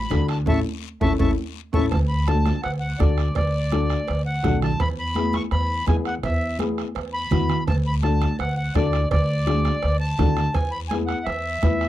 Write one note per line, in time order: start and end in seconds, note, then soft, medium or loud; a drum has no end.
0.00 0.27 B5 medium
0.10 0.47 D2 medium
0.10 0.36 D4 medium
0.10 0.36 F#4 medium
0.10 0.37 A4 medium
0.10 bombo low medium
0.10 bombo rim medium
0.10 high conga medium
0.10 high timbale medium
0.10 low timbale medium
0.10 short guiro medium
0.28 0.38 A5 medium
0.28 bombo rim medium
0.28 high timbale medium
0.28 short guiro medium
0.46 0.61 A1 medium
0.46 0.59 C#4 medium
0.46 0.59 E4 medium
0.46 0.59 A4 medium
0.46 0.60 E5 loud
0.46 0.60 A5 loud
0.46 0.60 C#6 medium
0.46 bombo low medium
0.46 high conga medium
0.46 high timbale loud
0.46 long guiro loud
1.01 1.15 A1 medium
1.01 1.13 C#4 medium
1.01 1.13 E4 medium
1.01 1.13 A4 medium
1.01 1.13 E5 loud
1.01 1.13 A5 loud
1.01 1.14 C#6 loud
1.01 bombo low loud
1.01 high conga medium
1.01 high timbale loud
1.01 long guiro medium
1.19 1.33 A1 medium
1.19 1.31 C#4 medium
1.19 1.31 E4 medium
1.19 1.31 A4 medium
1.19 1.31 E5 medium
1.19 1.31 A5 medium
1.19 1.31 C#6 medium
1.19 bombo low loud
1.19 high conga medium
1.19 high timbale medium
1.19 long guiro medium
1.73 1.87 A1 loud
1.73 1.86 C#4 loud
1.73 1.86 E4 loud
1.73 1.86 A4 loud
1.73 1.85 E5 medium
1.73 1.86 A5 loud
1.73 1.85 C#6 loud
1.73 bombo low medium
1.73 high conga medium
1.73 high timbale loud
1.73 long guiro loud
1.91 2.50 D2 loud
1.91 1.99 A5 medium
1.91 bombo low medium
1.91 bombo rim medium
1.91 cowbell loud
1.91 long guiro medium
2.08 2.28 B5 medium
2.28 2.53 D4 medium
2.28 2.53 F#4 medium
2.28 2.53 A4 medium
2.28 2.61 A5 medium
2.28 bombo rim medium
2.28 high conga medium
2.28 short guiro medium
2.46 bombo rim medium
2.46 high conga medium
2.46 short guiro medium
2.63 2.93 D2 medium
2.63 2.72 F#5 medium
2.63 bombo rim medium
2.63 cowbell medium
2.63 long guiro medium
2.80 3.00 F#5 medium
2.99 3.29 D2 loud
2.99 3.25 D4 medium
2.99 3.25 F#4 medium
2.99 3.25 A4 medium
2.99 3.35 D5 medium
2.99 bombo low medium
2.99 bombo rim medium
2.99 high conga medium
2.99 short guiro medium
3.18 bombo rim medium
3.18 short guiro medium
3.35 3.94 D2 loud
3.35 4.22 D5 medium
3.35 bombo low medium
3.35 bombo rim medium
3.35 cowbell loud
3.35 long guiro medium
3.72 3.97 D4 medium
3.72 3.98 F#4 medium
3.72 3.98 A4 medium
3.72 bombo rim medium
3.72 high conga medium
3.72 short guiro medium
3.90 bombo rim medium
3.90 short guiro medium
4.08 4.38 D2 medium
4.08 bombo rim medium
4.08 cowbell medium
4.08 long guiro medium
4.26 4.60 F#5 loud
4.43 4.73 B1 medium
4.43 4.69 D4 medium
4.43 4.70 F#4 medium
4.43 4.70 A4 medium
4.43 bombo low medium
4.43 bombo rim medium
4.43 high conga medium
4.43 low conga medium
4.43 low timbale medium
4.43 short guiro medium
4.62 4.81 A5 loud
4.62 bombo rim medium
4.62 low conga medium
4.62 short guiro medium
4.80 5.38 E2 loud
4.80 4.88 B5 loud
4.80 bombo low medium
4.80 bombo rim medium
4.80 cowbell medium
4.80 long guiro medium
4.99 5.36 B5 loud
5.15 5.41 B3 medium
5.15 5.41 E4 medium
5.15 5.41 G#4 medium
5.15 bombo rim medium
5.15 high conga medium
5.15 short guiro medium
5.33 5.43 C#6 loud
5.33 bombo rim medium
5.33 high conga medium
5.33 short guiro medium
5.51 5.81 E2 medium
5.51 5.85 B5 loud
5.51 bombo rim medium
5.51 cowbell medium
5.51 long guiro medium
5.87 6.17 E2 loud
5.87 6.12 B3 medium
5.87 6.13 E4 medium
5.87 6.13 G#4 medium
5.87 5.96 G#5 medium
5.87 bombo low medium
5.87 bombo rim medium
5.87 high conga medium
5.87 low timbale medium
5.87 short guiro medium
6.05 6.15 F#5 loud
6.05 bombo rim medium
6.05 short guiro medium
6.23 6.81 E2 loud
6.23 6.58 E5 medium
6.23 bombo low medium
6.23 bombo rim medium
6.23 cowbell loud
6.23 long guiro medium
6.59 6.85 B3 medium
6.59 6.85 E4 medium
6.59 6.85 G#4 medium
6.59 bombo rim medium
6.59 high conga medium
6.59 short guiro medium
6.78 bombo rim medium
6.78 short guiro medium
6.95 7.25 E2 medium
6.95 bombo rim medium
6.95 cowbell medium
6.95 long guiro medium
7.14 7.64 B5 loud
7.31 7.60 E2 medium
7.31 7.57 B3 medium
7.31 7.57 E4 medium
7.31 7.57 F#4 medium
7.31 bombo low medium
7.31 bombo rim medium
7.31 high conga medium
7.31 low conga medium
7.31 short guiro medium
7.49 bombo rim medium
7.49 low conga medium
7.49 short guiro medium
7.67 8.25 D2 loud
7.67 7.76 A5 loud
7.67 bombo low medium
7.67 bombo rim medium
7.67 cowbell loud
7.67 long guiro medium
7.87 7.95 B5 loud
8.03 8.29 D4 medium
8.03 8.29 F#4 medium
8.03 8.29 A4 medium
8.03 8.37 A5 loud
8.03 bombo rim medium
8.03 high conga medium
8.03 short guiro medium
8.21 bombo rim medium
8.21 high conga medium
8.21 short guiro medium
8.39 8.68 D2 medium
8.39 8.55 F#5 medium
8.39 bombo rim medium
8.39 cowbell medium
8.39 long guiro medium
8.57 8.74 F#5 medium
8.75 9.04 D2 medium
8.75 9.00 D4 medium
8.75 9.01 F#4 medium
8.75 9.01 A4 medium
8.75 9.09 D5 medium
8.75 bombo low medium
8.75 bombo rim medium
8.75 high conga medium
8.75 low timbale medium
8.75 short guiro medium
8.93 bombo rim medium
8.93 short guiro medium
9.11 9.69 D2 loud
9.11 9.97 D5 loud
9.11 bombo low medium
9.11 bombo rim medium
9.11 cowbell loud
9.11 long guiro medium
9.47 9.72 D4 medium
9.47 9.72 F#4 medium
9.47 9.72 G#4 medium
9.47 bombo rim medium
9.47 high conga medium
9.47 short guiro medium
9.65 bombo rim medium
9.65 high conga medium
9.65 short guiro medium
9.82 10.12 D2 medium
9.82 bombo rim medium
9.82 cowbell medium
9.82 long guiro medium
10.00 10.56 A5 loud
10.18 10.48 D2 loud
10.18 10.44 D4 medium
10.18 10.44 F#4 medium
10.18 10.45 A4 medium
10.18 bombo low medium
10.18 bombo rim medium
10.18 high conga medium
10.18 low conga medium
10.18 low timbale medium
10.18 short guiro medium
10.37 bombo rim medium
10.37 short guiro medium
10.54 11.13 E2 loud
10.54 10.71 G#5 medium
10.54 bombo low medium
10.54 bombo rim medium
10.54 cowbell loud
10.54 long guiro medium
10.72 10.80 B5 loud
10.89 11.16 B3 medium
10.89 11.17 E4 medium
10.89 11.17 G#4 medium
10.89 10.97 G#5 loud
10.89 bombo rim medium
10.89 high conga medium
10.89 short guiro medium
11.06 11.26 F#5 medium
11.06 bombo rim medium
11.06 short guiro medium
11.25 11.55 E2 medium
11.25 11.88 E5 medium
11.25 bombo rim medium
11.25 cowbell medium
11.25 long guiro medium
11.63 11.88 E2 medium
11.63 11.88 B3 medium
11.63 11.88 E4 medium
11.63 11.88 B4 medium
11.63 bombo low medium
11.63 bombo rim medium
11.63 high conga medium
11.63 short guiro medium
11.81 bombo rim medium
11.81 short guiro medium